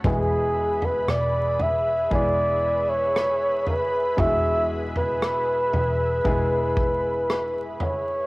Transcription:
<<
  \new Staff \with { instrumentName = "Analog synth pad" } { \time 4/4 \key e \mixolydian \tempo 4 = 58 <gis' b' e'' b''>1~ | <gis' b' e'' b''>1 | }
  \new Staff \with { instrumentName = "Flugelhorn" } { \time 4/4 \key e \mixolydian gis'8. b'16 d''8 e''8 d''8. cis''8. b'8 | e''8 r16 b'2~ b'8. cis''8 | }
  \new Staff \with { instrumentName = "Grand piano" } { \time 4/4 \key e \mixolydian <gis b e' gis'>2 <gis b e' gis'>2 | <gis b e' fis' gis'>2 <gis b e' gis'>2 | }
  \new Staff \with { instrumentName = "Grand piano" } { \clef bass \time 4/4 \key e \mixolydian b,4. r2 r8 | b,4. r2 r8 | }
  \new Staff \with { instrumentName = "Fingered electric bass" } { \clef bass \time 4/4 \key e \mixolydian e,,4 e,,4 e,,2 | e,,4. e,,8 e,,4. r8 | }
  \new DrumStaff \with { instrumentName = "Drums" } \drummode { \time 4/4 <bd tomfh>8. tomfh16 ss8 tomfh8 <bd tomfh>4 ss8 tomfh8 | <bd tomfh>8. tomfh16 ss8 tomfh8 <bd tomfh>8 bd8 ss8 tomfh8 | }
>>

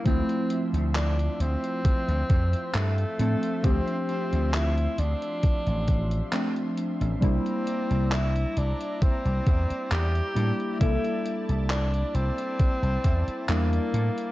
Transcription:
<<
  \new Staff \with { instrumentName = "Analog synth pad" } { \time 4/4 \key d \minor \tempo 4 = 67 << { c'''1~ | c'''1 | bes''1 | a''1 | } \\ { <f e''>1~ | <f e''>1 | <e' d''>1~ | <e' d''>1 | } >> }
  \new Staff \with { instrumentName = "Tenor saxophone" } { \time 4/4 \key d \minor c'8 r8 d'8 c'4. a4 | c'4 e'8 d'2 r8 | c'4 e'8 d'8 c'4 g'4 | e'8 r8 d'8 c'4. bes4 | }
  \new Staff \with { instrumentName = "Synth keys" } { \time 4/4 \key d \minor <f a c' e'>2.~ <f a c' e'>8 <f a c' d'>8 | <f a c' g'>2. <f a c' d'>4 | <g bes d' e'>2.~ <g bes d' e'>8 <g bes d' e'>8 | <g bes d' a'>2. <g bes d' e'>4 | }
  \new Staff \with { instrumentName = "Slap bass" } { \clef bass \time 4/4 \key d \minor d,16 r8 d,8 r16 d,16 r8 d,16 f,16 r16 g,16 r16 a,16 r16 | d,16 r8 d,8 r16 d,16 r8 a,,8 r4 a,,16 | c,16 r8 c,8 r16 c,16 r8 c,16 e,16 r16 e,16 r16 a,16 r16 | c,16 r8 c,8 r16 c,16 r8 c,16 e,16 r16 e,16 r16 a,16 r16 | }
  \new DrumStaff \with { instrumentName = "Drums" } \drummode { \time 4/4 <hh bd>16 hh16 hh16 hh16 <hc hh>16 hh16 hh16 hh16 <hh bd>16 hh16 <hh bd>16 hh16 <hc hh>16 hh16 hh16 hh16 | <hh bd>16 hh16 hh16 hh16 <hc hh>16 hh16 hh16 hh16 <hh bd>16 hh16 <hh bd>16 hh16 <hc hh>16 hh16 hh16 hh16 | <hh bd>16 hh16 hh16 hh16 <hc hh>16 hh16 hh16 hh16 <hh bd>16 hh16 <hh bd>16 hh16 <hc hh>16 hh16 hh16 hh16 | <hh bd>16 hh16 hh16 hh16 <hc hh>16 hh16 hh16 hh16 <hh bd>16 hh16 <hh bd>16 hh16 <hc hh>16 hh16 hh16 hh16 | }
>>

